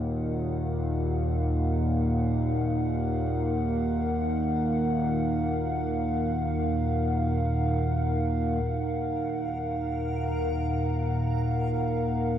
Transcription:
Already playing: D#2 A#2 D#4 A#4 F5 F#5
8.62 D#2 A#2 A#4

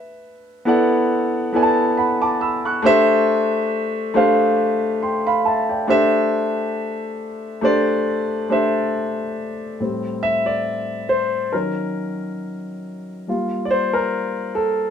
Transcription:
Already playing: B4 E5
0.65 B3 E4 A4 D5 F#5
1.53 B3 E4 A4 D5 G#5
1.63 A5
1.97 F#5 B5
2.22 A5 D6
2.41 B5 E6
2.65 C#6 F#6
2.82 A3 D4 G4 C5 E5
4.14 A3 D4 G4 C5 F5
5.03 G5 C6
5.27 F5 B5
5.45 E5 A5
5.69 D5 G5
5.87 A3 D4 G4 C5 E5
7.61 A3 D4 G4 C5 D5
8.49 A3 D4 G4 C5 E5
9.80 A2 G3 C4
10.23 E5
10.46 D5
11.09 C5
11.52 D#3 F#3 C#4 A#4
13.28 G3 A#3 F4
13.65 D5
13.71 C5
13.93 A#4
14.55 A4

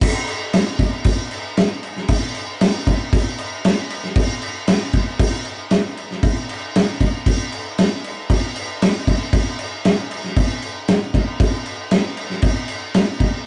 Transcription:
0.01 kick, crash
0.27 crash
0.53 snare, crash
0.79 kick, crash
1.04 kick, crash
1.31 crash
1.57 snare, crash
1.83 crash
1.96 snare
2.08 kick, crash
2.35 crash
2.61 snare, crash
2.87 kick, crash
3.13 kick, crash
3.38 crash
3.64 snare, crash
3.90 crash
4.04 snare
4.15 kick, crash
4.42 crash
4.67 snare, crash
4.93 kick, crash
5.19 kick, crash
5.45 crash
5.71 snare, crash
5.97 crash
6.11 snare
6.23 kick, crash
6.49 crash
6.75 snare, crash
7.00 kick, crash
7.26 kick, crash
7.52 crash
7.78 snare, crash
8.04 crash
8.30 kick, crash
8.56 crash
8.82 snare, crash
9.07 kick, crash
9.33 kick, crash
9.59 crash
9.85 snare, crash
10.11 crash
10.24 snare
10.36 kick, crash
10.62 crash
10.88 snare, crash
11.14 kick, crash
11.40 kick, crash
11.66 crash
11.91 snare, crash
12.17 crash
12.30 snare
12.42 kick, crash
12.68 crash
12.94 snare, crash
13.20 kick, crash

